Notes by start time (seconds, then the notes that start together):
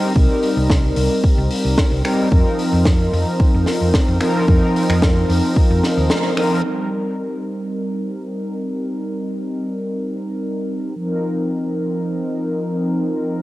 Already playing: G3 C4 D#4 A#4
0.15 C2 C4 D#4 A#4, kick
0.42 open hi-hat
0.57 C2
0.70 kick, snare
0.96 C2, open hi-hat
1.24 kick
1.38 C2
1.50 open hi-hat
1.65 C2
1.78 kick, snare
1.92 C2
2.04 G3 C4 D#4 A#4, finger snap, open hi-hat
2.31 F2 F3 C4 D#4 A#4, kick
2.59 open hi-hat
2.73 F2
2.85 kick, snare
3.13 F2, open hi-hat
3.40 muted fingered electric bass stroke, kick
3.54 F2
3.66 snare, open hi-hat
3.81 F2
3.94 kick, snare
4.08 F2
4.20 F3 C4 D#4 A#4, finger snap, open hi-hat
4.47 F2 F3 C4 D#4 A#4, kick
4.76 open hi-hat
4.89 F2, finger snap
5.02 kick, snare
5.29 F2, open hi-hat
5.56 kick
5.70 F2
5.83 snare, open hi-hat
5.97 D#2
6.10 snare
6.36 F3 C4 D#4 A#4, finger snap, open hi-hat
6.63 G3 D#4 A#4
10.96 F3 C4 D#4 A#4